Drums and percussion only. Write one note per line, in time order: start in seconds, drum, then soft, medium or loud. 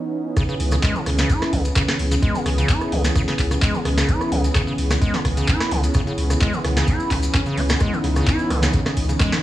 0.36 kick loud
0.36 cross-stick medium
0.36 closed hi-hat medium
0.36 maracas medium
0.49 maracas soft
0.60 open hi-hat loud
0.71 cross-stick medium
0.71 closed hi-hat medium
0.71 maracas medium
0.83 kick loud
0.83 clap loud
0.83 closed hi-hat medium
0.83 maracas medium
0.95 maracas soft
1.06 cross-stick medium
1.06 open hi-hat loud
1.18 snare medium
1.18 closed hi-hat medium
1.18 maracas medium
1.30 kick loud
1.30 closed hi-hat medium
1.30 maracas medium
1.42 cross-stick medium
1.42 snare soft
1.42 maracas soft
1.53 kick medium
1.53 open hi-hat loud
1.65 closed hi-hat medium
1.65 maracas medium
1.76 kick loud
1.76 cross-stick medium
1.76 clap loud
1.76 closed hi-hat medium
1.76 maracas medium
1.88 snare medium
1.88 maracas soft
1.99 open hi-hat loud
2.11 closed hi-hat medium
2.11 maracas medium
2.23 kick loud
2.23 closed hi-hat medium
2.23 maracas medium
2.35 maracas soft
2.46 cross-stick medium
2.46 open hi-hat loud
2.58 closed hi-hat medium
2.58 maracas medium
2.69 kick loud
2.69 clap loud
2.69 closed hi-hat medium
2.69 maracas medium
2.81 cross-stick medium
2.81 maracas soft
2.92 open hi-hat loud
3.04 snare medium
3.04 closed hi-hat medium
3.04 maracas medium
3.15 kick loud
3.15 cross-stick medium
3.15 closed hi-hat medium
3.15 maracas medium
3.28 snare soft
3.28 maracas soft
3.39 kick medium
3.39 clap medium
3.39 open hi-hat loud
3.51 cross-stick medium
3.51 closed hi-hat soft
3.51 maracas medium
3.62 kick loud
3.62 clap loud
3.62 closed hi-hat medium
3.62 maracas medium
3.75 maracas soft
3.85 cross-stick medium
3.85 open hi-hat loud
3.98 snare medium
3.98 closed hi-hat medium
3.98 maracas medium
4.09 kick loud
4.09 closed hi-hat medium
4.09 maracas medium
4.21 cross-stick medium
4.21 maracas soft
4.32 open hi-hat loud
4.44 closed hi-hat soft
4.44 maracas medium
4.55 kick loud
4.55 cross-stick medium
4.55 clap loud
4.55 closed hi-hat medium
4.55 maracas medium
4.67 maracas soft
4.78 open hi-hat loud
4.91 cross-stick medium
4.91 snare medium
4.91 closed hi-hat medium
4.91 maracas medium
5.02 kick loud
5.02 closed hi-hat medium
5.02 maracas medium
5.14 snare soft
5.14 maracas soft
5.25 kick medium
5.25 cross-stick medium
5.25 open hi-hat loud
5.37 closed hi-hat medium
5.37 maracas medium
5.48 kick loud
5.48 clap loud
5.48 closed hi-hat medium
5.48 maracas medium
5.60 cross-stick medium
5.60 snare medium
5.60 maracas soft
5.71 open hi-hat loud
5.83 closed hi-hat medium
5.83 maracas medium
5.94 kick loud
5.94 cross-stick medium
5.94 closed hi-hat medium
5.94 maracas medium
6.07 maracas soft
6.18 open hi-hat loud
6.30 cross-stick medium
6.30 closed hi-hat medium
6.30 maracas medium
6.41 kick loud
6.41 clap loud
6.41 closed hi-hat medium
6.41 maracas medium
6.53 maracas soft
6.64 cross-stick medium
6.64 open hi-hat loud
6.77 snare medium
6.77 closed hi-hat medium
6.77 maracas medium
6.87 kick loud
6.87 closed hi-hat medium
6.87 maracas medium
7.00 maracas soft
7.11 kick medium
7.11 clap medium
7.11 open hi-hat loud
7.23 closed hi-hat soft
7.23 maracas medium
7.34 kick loud
7.34 cross-stick medium
7.34 clap loud
7.34 closed hi-hat medium
7.34 maracas medium
7.46 maracas soft
7.57 open hi-hat loud
7.69 cross-stick medium
7.69 snare medium
7.69 closed hi-hat medium
7.69 maracas medium
7.80 kick loud
7.80 cross-stick medium
7.80 closed hi-hat medium
7.80 maracas medium
7.93 maracas soft
8.04 open hi-hat loud
8.16 cross-stick medium
8.16 closed hi-hat soft
8.16 maracas medium
8.27 kick loud
8.27 clap loud
8.27 closed hi-hat medium
8.27 maracas medium
8.39 maracas soft
8.51 cross-stick medium
8.51 open hi-hat loud
8.63 snare medium
8.63 closed hi-hat medium
8.63 maracas medium
8.73 kick loud
8.73 closed hi-hat medium
8.73 maracas medium
8.86 cross-stick medium
8.86 snare soft
8.86 maracas soft
8.97 kick medium
8.97 open hi-hat loud
9.09 closed hi-hat soft
9.09 maracas medium
9.20 kick loud
9.20 cross-stick medium
9.20 clap loud
9.20 closed hi-hat medium
9.20 maracas medium
9.32 snare medium
9.32 maracas soft